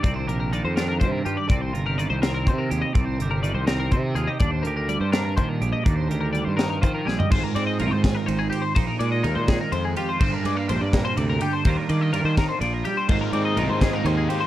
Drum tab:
CC |------------|------------|------------|------------|
RD |------------|------------|------------|------------|
HH |x-x-x-x-x-x-|x-x-x-x-x-x-|x-x-x-x-x-x-|x-x-x-x-x-x-|
SD |------o-----|------o-----|------o-----|------o-----|
FT |------------|------------|------------|------------|
BD |o-------o---|o-------o---|o-------o---|o-------o---|

CC |------------|x-----------|------------|x-----------|
RD |------------|--x-x-x-x-x-|x-x-x-x-x-x-|--x-x-x-x-x-|
HH |x-x-x-x-x---|------------|------------|------------|
SD |------o---o-|------o-----|------o-----|------o-----|
FT |-----------o|------------|------------|------------|
BD |o-------o---|o-----o-----|o-----o-----|o-----o-----|

CC |------------|x-----------|
RD |x-x-x-x-x-x-|--x-x-x-x-x-|
HH |------------|------------|
SD |------o-----|------o-----|
FT |------------|------------|
BD |o-----o-----|o-----o-----|